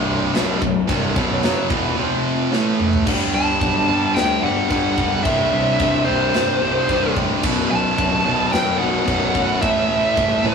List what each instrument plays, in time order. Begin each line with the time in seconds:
Already playing: picked electric bass C1, distorted electric guitar C2 G2 C3
0.34 picked electric bass B0, distorted electric guitar B1 F#2 B2, snare, crash
0.62 picked electric bass B0, distorted electric guitar B1 F#2, kick
0.89 picked electric bass C1, distorted electric guitar C2 G2 C3, kick, crash
1.16 picked electric bass B0, distorted electric guitar B1 F#2 B2, kick
1.43 picked electric bass F#1, distorted electric guitar F#2 C#3 F#3, snare, crash
1.70 picked electric bass E1, distorted electric guitar E2 B2 E3, kick
1.98 distorted electric guitar F2 C3 F3
2.52 distorted electric guitar A2 E3 A3, snare
2.80 mid tom
2.93 floor tom
3.06 picked electric bass G1, distorted electric guitar G2 D3 G3, kick, crash, china
3.33 picked electric bass G2, distorted electric guitar G2 D3 G3, lead electric guitar A5
3.61 picked electric bass B1, distorted electric guitar G2 D3 G3, kick, china
3.88 picked electric bass G1, distorted electric guitar G2 D3 G3
4.15 picked electric bass D2, distorted electric guitar G2 D3 G3, lead electric guitar G5, snare, china
4.43 picked electric bass G1, distorted electric guitar G2 D3 G3, lead electric guitar F#5
4.70 picked electric bass G1, distorted electric guitar G2 D3 G3, kick, china
4.97 picked electric bass B0, distorted electric guitar G2 D3 G3, kick
5.23 picked electric bass C1, distorted electric guitar C2 G2 C3, lead electric guitar E5, kick, china
5.52 distorted electric guitar C2 G2 C3, picked electric bass C2
5.79 picked electric bass E1, distorted electric guitar C2 G2 C3, kick, china
6.05 picked electric bass C1, distorted electric guitar C2 G2 C3, lead electric guitar C5
6.33 picked electric bass G1, distorted electric guitar C2 G2 C3, snare, china
6.61 picked electric bass C1, distorted electric guitar C2 G2 C3
6.89 picked electric bass C1, distorted electric guitar C2 G2 C3, kick, china
7.16 picked electric bass A1, distorted electric guitar C2 G2 C3, kick
7.43 picked electric bass B0, distorted electric guitar B1 F#2 B2, kick, china, crash
7.69 distorted electric guitar B1 F#2 B2, picked electric bass B1, lead electric guitar A5
7.97 picked electric bass D1, distorted electric guitar B1 F#2 B2, kick, china
8.24 picked electric bass B0, distorted electric guitar B1 F#2 B2
8.52 picked electric bass F#1, distorted electric guitar B1 F#2 B2, lead electric guitar G5, snare, china
8.79 picked electric bass B0, distorted electric guitar B1 F#2 B2, lead electric guitar F#5
9.07 picked electric bass B0, distorted electric guitar B1 F#2 B2, kick, china
9.35 picked electric bass A1, distorted electric guitar B1 F#2 B2, kick
9.62 picked electric bass A1, distorted electric guitar A2 E3 A3, lead electric guitar E5, kick, china
9.89 picked electric bass A1, distorted electric guitar A2 E3 A3
10.16 picked electric bass C1, distorted electric guitar A2 E3 A3, kick, china
10.43 picked electric bass A1, distorted electric guitar A2 E3 A3, lead electric guitar C5